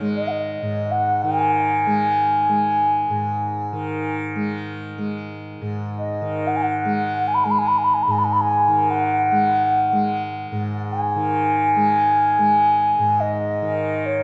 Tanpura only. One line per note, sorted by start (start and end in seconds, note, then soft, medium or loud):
0.00 0.62 G#2 medium
0.00 1.23 D#3 medium
0.00 1.86 G#3 medium
0.62 3.09 G#2 soft
1.24 3.72 D#3 medium
1.86 2.49 G#3 soft
2.49 4.35 G#3 soft
3.10 5.61 G#2 soft
3.73 6.21 D#3 medium
4.35 4.98 G#3 soft
4.98 6.85 G#3 soft
5.61 8.07 G#2 soft
6.21 8.68 D#3 medium
6.85 7.45 G#3 soft
7.45 9.31 G#3 soft
8.07 10.51 G#2 medium
8.68 11.15 D#3 soft
9.31 9.92 G#3 soft
9.92 11.76 G#3 soft
10.52 12.98 G#2 medium
11.16 13.62 D#3 soft
11.76 12.39 G#3 soft
12.39 14.23 G#3 medium
12.99 14.23 G#2 soft
13.62 14.23 D#3 medium